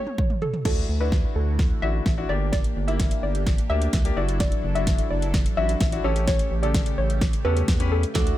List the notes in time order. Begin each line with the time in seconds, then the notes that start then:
Already playing: C#5
0.07 mid tom
0.18 kick, mid tom
0.30 mid tom
0.42 A4, floor tom
0.53 floor tom
0.65 D2 D3 A3 D4 E4 F#4 A4, kick, snare, crash
0.89 D2
1.00 D4 E4 F#4 B4
1.12 kick, snare
1.35 D2 A4
1.59 kick, snare
1.82 A1 D4 E4 F#4 E5
2.06 A1, kick, snare
2.17 D4 E4 F#4
2.29 G1 A#3 D4 G4 D5
2.52 D5, kick, snare, closed hi-hat
2.64 closed hi-hat
2.76 G1
2.88 A#3 D4 E4 E5, closed hi-hat
3.00 kick, snare, closed hi-hat
3.11 closed hi-hat
3.23 G1 D5
3.35 closed hi-hat
3.46 kick, snare, closed hi-hat
3.58 closed hi-hat
3.69 D2 A#3 D4 G4 E5
3.82 closed hi-hat
3.93 C#2, kick, snare, closed hi-hat
4.05 A#3 D4 G4, closed hi-hat
4.16 F#1 F#3 D4 E4 F#4 A4 D5
4.29 closed hi-hat
4.40 D5, kick, snare, closed hi-hat
4.52 closed hi-hat
4.64 F#1
4.75 D4 E4 F#4 E5, closed hi-hat
4.87 kick, snare, closed hi-hat
4.98 closed hi-hat
5.11 F#1 D5
5.22 closed hi-hat
5.34 kick, snare, closed hi-hat
5.46 closed hi-hat
5.57 A1 D4 E4 F#4 E5
5.69 closed hi-hat
5.80 A1, kick, snare, closed hi-hat
5.92 D4 E4 F#4, closed hi-hat
6.04 A1 C#3 A3 C#4 G4 A4 C#5
6.16 closed hi-hat
6.27 C#5, kick, snare, closed hi-hat
6.39 closed hi-hat
6.51 A1
6.63 C#3 G4 A4 D5, closed hi-hat
6.74 kick, snare, closed hi-hat
6.86 closed hi-hat
6.98 A1 C#5
7.10 closed hi-hat
7.21 kick, snare, closed hi-hat
7.33 closed hi-hat
7.45 E2 C#4 G4 A4 B4
7.57 closed hi-hat
7.68 E2, kick, snare, closed hi-hat
7.80 C#4 G4 B4, closed hi-hat
7.92 A4
8.03 closed hi-hat
8.14 D2 D3 A3 D4 E4 F#4 A4 D5, kick, snare, closed hi-hat
8.27 closed hi-hat